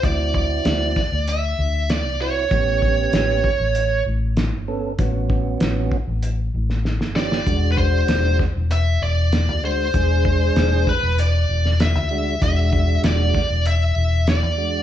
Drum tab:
HH |x---x---x---x---|x---x---x---x---|x---x---x-------|x---x---x---x---|
SD |----o-o-----o---|----o-------o---|----o------ooooo|----o-o-----o---|
BD |o-o---o---------|o-o---o---------|o-o---o---------|o-o---o---------|

HH |x---x---x---x---|x---x---x---x---|
SD |----o------oo---|----o-o-----o---|
BD |o-o---o---------|o-o---o---------|